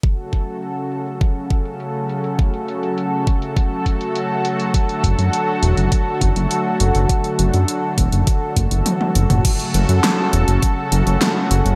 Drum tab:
CC |----------------|----------------|----------------|----------------|
HH |xxxxx-xxx-xxx-xx|xxxxx-xxx-xxx-xx|xxxxx-xxx-xxx-xx|xxxxx-xxx-xxx-xx|
SD |----------------|----------------|----------------|----------------|
T1 |----------------|----------------|----------------|------------oo--|
T2 |----------------|----------------|----------------|---------------o|
BD |o-o-----o-o-----|o-----o-o-o-----|o-o-----o-o-----|o-----o-o-o-----|

CC |x---------------|
HH |xxxxx-xxx-xxx-xx|
SD |----o-------o---|
T1 |----------------|
T2 |----------------|
BD |o-------o-------|